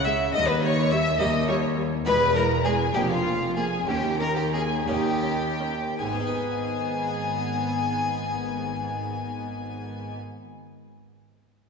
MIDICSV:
0, 0, Header, 1, 8, 480
1, 0, Start_track
1, 0, Key_signature, 5, "minor"
1, 0, Tempo, 574713
1, 289, Time_signature, 6, 3, 24, 8
1, 2212, Tempo, 614754
1, 3172, Tempo, 659341
1, 3652, Tempo, 726392
1, 4612, Tempo, 768246
1, 8176, End_track
2, 0, Start_track
2, 0, Title_t, "Violin section"
2, 0, Program_c, 0, 48
2, 47, Note_on_c, 0, 88, 121
2, 114, Note_off_c, 0, 88, 0
2, 286, Note_on_c, 0, 87, 116
2, 404, Note_off_c, 0, 87, 0
2, 416, Note_on_c, 0, 83, 114
2, 528, Note_on_c, 0, 85, 127
2, 531, Note_off_c, 0, 83, 0
2, 759, Note_on_c, 0, 88, 127
2, 766, Note_off_c, 0, 85, 0
2, 1000, Note_off_c, 0, 88, 0
2, 1000, Note_on_c, 0, 87, 115
2, 1237, Note_on_c, 0, 85, 96
2, 1239, Note_off_c, 0, 87, 0
2, 1304, Note_off_c, 0, 85, 0
2, 1723, Note_on_c, 0, 83, 114
2, 1790, Note_off_c, 0, 83, 0
2, 1972, Note_on_c, 0, 82, 117
2, 2210, Note_off_c, 0, 82, 0
2, 2212, Note_on_c, 0, 80, 121
2, 2431, Note_on_c, 0, 79, 125
2, 2446, Note_off_c, 0, 80, 0
2, 2556, Note_off_c, 0, 79, 0
2, 2556, Note_on_c, 0, 77, 117
2, 2914, Note_off_c, 0, 77, 0
2, 2927, Note_on_c, 0, 80, 109
2, 3168, Note_off_c, 0, 80, 0
2, 3172, Note_on_c, 0, 79, 103
2, 3403, Note_off_c, 0, 79, 0
2, 3404, Note_on_c, 0, 82, 111
2, 3524, Note_on_c, 0, 79, 108
2, 3527, Note_off_c, 0, 82, 0
2, 3644, Note_on_c, 0, 80, 117
2, 3649, Note_off_c, 0, 79, 0
2, 3872, Note_off_c, 0, 80, 0
2, 3881, Note_on_c, 0, 79, 112
2, 4598, Note_off_c, 0, 79, 0
2, 4612, Note_on_c, 0, 80, 99
2, 7218, Note_off_c, 0, 80, 0
2, 8176, End_track
3, 0, Start_track
3, 0, Title_t, "Violin"
3, 0, Program_c, 1, 40
3, 42, Note_on_c, 1, 76, 110
3, 284, Note_off_c, 1, 76, 0
3, 290, Note_on_c, 1, 75, 124
3, 401, Note_on_c, 1, 71, 106
3, 414, Note_off_c, 1, 75, 0
3, 521, Note_on_c, 1, 73, 118
3, 533, Note_off_c, 1, 71, 0
3, 765, Note_on_c, 1, 76, 117
3, 777, Note_off_c, 1, 73, 0
3, 987, Note_off_c, 1, 76, 0
3, 992, Note_on_c, 1, 75, 96
3, 1223, Note_off_c, 1, 75, 0
3, 1228, Note_on_c, 1, 73, 95
3, 1295, Note_off_c, 1, 73, 0
3, 1721, Note_on_c, 1, 71, 125
3, 1948, Note_off_c, 1, 71, 0
3, 1965, Note_on_c, 1, 70, 122
3, 2032, Note_off_c, 1, 70, 0
3, 2212, Note_on_c, 1, 68, 111
3, 2274, Note_off_c, 1, 68, 0
3, 2443, Note_on_c, 1, 67, 108
3, 2491, Note_off_c, 1, 67, 0
3, 2571, Note_on_c, 1, 65, 96
3, 2921, Note_off_c, 1, 65, 0
3, 2928, Note_on_c, 1, 68, 96
3, 2991, Note_off_c, 1, 68, 0
3, 3175, Note_on_c, 1, 67, 101
3, 3404, Note_off_c, 1, 67, 0
3, 3408, Note_on_c, 1, 70, 114
3, 3526, Note_off_c, 1, 70, 0
3, 3531, Note_on_c, 1, 67, 89
3, 3646, Note_off_c, 1, 67, 0
3, 3650, Note_on_c, 1, 68, 99
3, 3703, Note_off_c, 1, 68, 0
3, 3881, Note_on_c, 1, 67, 105
3, 4598, Note_off_c, 1, 67, 0
3, 4614, Note_on_c, 1, 80, 92
3, 7220, Note_off_c, 1, 80, 0
3, 8176, End_track
4, 0, Start_track
4, 0, Title_t, "Violin section"
4, 0, Program_c, 2, 48
4, 43, Note_on_c, 2, 76, 102
4, 110, Note_off_c, 2, 76, 0
4, 275, Note_on_c, 2, 75, 127
4, 398, Note_off_c, 2, 75, 0
4, 402, Note_on_c, 2, 71, 109
4, 515, Note_on_c, 2, 73, 115
4, 524, Note_off_c, 2, 71, 0
4, 754, Note_off_c, 2, 73, 0
4, 760, Note_on_c, 2, 76, 110
4, 996, Note_off_c, 2, 76, 0
4, 1002, Note_on_c, 2, 75, 106
4, 1237, Note_on_c, 2, 73, 105
4, 1241, Note_off_c, 2, 75, 0
4, 1473, Note_off_c, 2, 73, 0
4, 1718, Note_on_c, 2, 71, 119
4, 1946, Note_off_c, 2, 71, 0
4, 1958, Note_on_c, 2, 70, 113
4, 2202, Note_on_c, 2, 68, 98
4, 2208, Note_off_c, 2, 70, 0
4, 2436, Note_off_c, 2, 68, 0
4, 2436, Note_on_c, 2, 67, 108
4, 2555, Note_on_c, 2, 65, 95
4, 2559, Note_off_c, 2, 67, 0
4, 2919, Note_on_c, 2, 68, 97
4, 2920, Note_off_c, 2, 65, 0
4, 3163, Note_on_c, 2, 67, 111
4, 3164, Note_off_c, 2, 68, 0
4, 3399, Note_on_c, 2, 70, 106
4, 3404, Note_off_c, 2, 67, 0
4, 3449, Note_off_c, 2, 70, 0
4, 3525, Note_on_c, 2, 67, 86
4, 3575, Note_off_c, 2, 67, 0
4, 3649, Note_on_c, 2, 68, 94
4, 3874, Note_off_c, 2, 68, 0
4, 3874, Note_on_c, 2, 67, 102
4, 4606, Note_on_c, 2, 68, 97
4, 4609, Note_off_c, 2, 67, 0
4, 7212, Note_off_c, 2, 68, 0
4, 8176, End_track
5, 0, Start_track
5, 0, Title_t, "Harpsichord"
5, 0, Program_c, 3, 6
5, 0, Note_on_c, 3, 49, 74
5, 0, Note_on_c, 3, 61, 61
5, 0, Note_on_c, 3, 64, 56
5, 0, Note_on_c, 3, 68, 64
5, 185, Note_off_c, 3, 49, 0
5, 256, Note_off_c, 3, 61, 0
5, 260, Note_off_c, 3, 64, 0
5, 262, Note_off_c, 3, 68, 0
5, 286, Note_on_c, 3, 39, 82
5, 897, Note_off_c, 3, 39, 0
5, 1001, Note_on_c, 3, 58, 69
5, 1004, Note_on_c, 3, 39, 84
5, 1006, Note_on_c, 3, 63, 67
5, 1010, Note_on_c, 3, 67, 76
5, 1518, Note_off_c, 3, 58, 0
5, 1522, Note_off_c, 3, 63, 0
5, 1524, Note_off_c, 3, 67, 0
5, 1615, Note_off_c, 3, 39, 0
5, 1712, Note_on_c, 3, 40, 80
5, 1715, Note_on_c, 3, 56, 64
5, 1721, Note_on_c, 3, 59, 61
5, 1722, Note_on_c, 3, 68, 62
5, 2340, Note_off_c, 3, 40, 0
5, 2412, Note_off_c, 3, 56, 0
5, 2414, Note_off_c, 3, 59, 0
5, 2415, Note_off_c, 3, 68, 0
5, 2441, Note_on_c, 3, 41, 71
5, 2441, Note_on_c, 3, 58, 59
5, 2444, Note_on_c, 3, 62, 60
5, 2450, Note_on_c, 3, 68, 61
5, 3063, Note_off_c, 3, 41, 0
5, 3139, Note_off_c, 3, 58, 0
5, 3140, Note_off_c, 3, 62, 0
5, 3143, Note_off_c, 3, 68, 0
5, 3166, Note_on_c, 3, 39, 83
5, 3782, Note_off_c, 3, 39, 0
5, 3876, Note_on_c, 3, 58, 56
5, 3877, Note_on_c, 3, 39, 65
5, 3879, Note_on_c, 3, 61, 57
5, 3883, Note_on_c, 3, 63, 64
5, 4404, Note_off_c, 3, 58, 0
5, 4406, Note_off_c, 3, 61, 0
5, 4409, Note_off_c, 3, 63, 0
5, 4508, Note_off_c, 3, 39, 0
5, 4613, Note_on_c, 3, 44, 78
5, 4654, Note_on_c, 3, 56, 69
5, 4700, Note_on_c, 3, 59, 72
5, 4745, Note_on_c, 3, 63, 70
5, 4787, Note_on_c, 3, 71, 68
5, 7219, Note_off_c, 3, 44, 0
5, 7261, Note_off_c, 3, 56, 0
5, 7306, Note_off_c, 3, 59, 0
5, 7351, Note_off_c, 3, 63, 0
5, 7393, Note_off_c, 3, 71, 0
5, 8176, End_track
6, 0, Start_track
6, 0, Title_t, "Viola section"
6, 0, Program_c, 4, 48
6, 56, Note_on_c, 4, 56, 72
6, 123, Note_off_c, 4, 56, 0
6, 293, Note_on_c, 4, 55, 83
6, 360, Note_off_c, 4, 55, 0
6, 524, Note_on_c, 4, 55, 80
6, 591, Note_off_c, 4, 55, 0
6, 767, Note_on_c, 4, 55, 83
6, 834, Note_off_c, 4, 55, 0
6, 1000, Note_on_c, 4, 55, 82
6, 1067, Note_off_c, 4, 55, 0
6, 1238, Note_on_c, 4, 55, 89
6, 1305, Note_off_c, 4, 55, 0
6, 1476, Note_on_c, 4, 55, 76
6, 1543, Note_off_c, 4, 55, 0
6, 1722, Note_on_c, 4, 56, 89
6, 1789, Note_off_c, 4, 56, 0
6, 1971, Note_on_c, 4, 56, 74
6, 2038, Note_off_c, 4, 56, 0
6, 2215, Note_on_c, 4, 56, 82
6, 2278, Note_off_c, 4, 56, 0
6, 2449, Note_on_c, 4, 58, 86
6, 2511, Note_off_c, 4, 58, 0
6, 2684, Note_on_c, 4, 58, 77
6, 2747, Note_off_c, 4, 58, 0
6, 2930, Note_on_c, 4, 58, 82
6, 2992, Note_off_c, 4, 58, 0
6, 3175, Note_on_c, 4, 61, 85
6, 3233, Note_off_c, 4, 61, 0
6, 3410, Note_on_c, 4, 61, 66
6, 3468, Note_off_c, 4, 61, 0
6, 3651, Note_on_c, 4, 61, 72
6, 3704, Note_off_c, 4, 61, 0
6, 3879, Note_on_c, 4, 61, 72
6, 3932, Note_off_c, 4, 61, 0
6, 4114, Note_on_c, 4, 61, 71
6, 4167, Note_off_c, 4, 61, 0
6, 4355, Note_on_c, 4, 61, 66
6, 4408, Note_off_c, 4, 61, 0
6, 4610, Note_on_c, 4, 59, 80
6, 7216, Note_off_c, 4, 59, 0
6, 8176, End_track
7, 0, Start_track
7, 0, Title_t, "Cello section"
7, 0, Program_c, 5, 48
7, 0, Note_on_c, 5, 49, 105
7, 205, Note_off_c, 5, 49, 0
7, 286, Note_on_c, 5, 39, 108
7, 917, Note_off_c, 5, 39, 0
7, 1003, Note_on_c, 5, 39, 105
7, 1636, Note_off_c, 5, 39, 0
7, 1723, Note_on_c, 5, 40, 105
7, 2364, Note_off_c, 5, 40, 0
7, 2441, Note_on_c, 5, 41, 100
7, 3082, Note_off_c, 5, 41, 0
7, 3167, Note_on_c, 5, 39, 107
7, 3797, Note_off_c, 5, 39, 0
7, 3874, Note_on_c, 5, 39, 98
7, 4519, Note_off_c, 5, 39, 0
7, 4608, Note_on_c, 5, 44, 90
7, 7215, Note_off_c, 5, 44, 0
7, 8176, End_track
8, 0, Start_track
8, 0, Title_t, "Double bass section"
8, 0, Program_c, 6, 48
8, 0, Note_on_c, 6, 37, 99
8, 207, Note_off_c, 6, 37, 0
8, 290, Note_on_c, 6, 39, 117
8, 920, Note_off_c, 6, 39, 0
8, 1008, Note_on_c, 6, 39, 95
8, 1638, Note_off_c, 6, 39, 0
8, 1720, Note_on_c, 6, 28, 112
8, 2362, Note_off_c, 6, 28, 0
8, 2451, Note_on_c, 6, 29, 90
8, 3087, Note_off_c, 6, 29, 0
8, 3174, Note_on_c, 6, 39, 103
8, 3800, Note_off_c, 6, 39, 0
8, 3879, Note_on_c, 6, 39, 86
8, 4522, Note_off_c, 6, 39, 0
8, 4614, Note_on_c, 6, 32, 92
8, 7221, Note_off_c, 6, 32, 0
8, 8176, End_track
0, 0, End_of_file